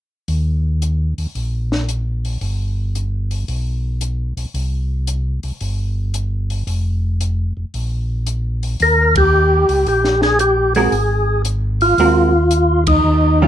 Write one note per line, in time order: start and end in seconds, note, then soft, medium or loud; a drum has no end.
0.28 1.14 D#2 medium
0.28 open hi-hat soft
0.82 closed hi-hat soft
1.18 1.27 D#2 soft
1.18 open hi-hat soft
1.35 2.38 A#1 medium
1.35 open hi-hat soft
1.72 snare soft
1.89 closed hi-hat soft
2.25 open hi-hat soft
2.41 3.44 G1 medium
2.41 open hi-hat soft
2.95 closed hi-hat soft
3.31 open hi-hat soft
3.48 4.34 B1 medium
3.48 open hi-hat soft
4.01 closed hi-hat soft
4.37 4.46 B1 soft
4.37 open hi-hat soft
4.54 5.40 C2 medium
4.54 open hi-hat soft
5.07 closed hi-hat soft
5.43 5.52 C2 soft
5.43 open hi-hat soft
5.61 6.64 G1 medium
5.61 open hi-hat soft
6.14 closed hi-hat soft
6.50 open hi-hat soft
6.67 7.53 F1 medium
6.67 open hi-hat soft
7.21 closed hi-hat soft
7.57 7.66 F1 soft
7.74 8.76 A#1 medium
7.74 open hi-hat soft
8.27 closed hi-hat soft
8.63 open hi-hat soft
8.80 9.66 D#2 medium
8.80 9.15 A#4 loud
8.80 open hi-hat soft
9.15 9.87 G4 loud
9.15 kick medium
9.15 ride medium
9.69 9.85 C#2 medium
9.69 open hi-hat soft
9.86 10.89 A#1 medium
9.86 10.21 G4 medium
9.86 open hi-hat soft
10.04 snare soft
10.22 10.39 G#4 medium
10.22 snare soft
10.39 10.74 G4 medium
10.39 closed hi-hat medium
10.75 10.91 G#3 medium
10.75 10.92 C4 soft
10.75 10.92 F#4 medium
10.75 11.42 G#4 medium
10.75 10.92 A#4 medium
10.75 open hi-hat soft
10.92 11.95 G#1 medium
10.92 open hi-hat soft
11.45 closed hi-hat soft
11.81 12.84 F4 loud
11.81 open hi-hat soft
11.98 13.00 D#2 medium
11.98 12.32 G#3 medium
11.98 12.32 C4 medium
11.98 12.32 F#4 soft
11.98 12.32 A#4 medium
11.98 open hi-hat soft
12.51 closed hi-hat soft
12.87 13.48 D#4 medium
12.87 kick medium
12.87 ride medium
13.04 13.48 D#2 loud
13.42 13.48 D#3 medium
13.42 13.48 G3 medium
13.42 13.48 C#4 medium
13.42 13.48 F4 medium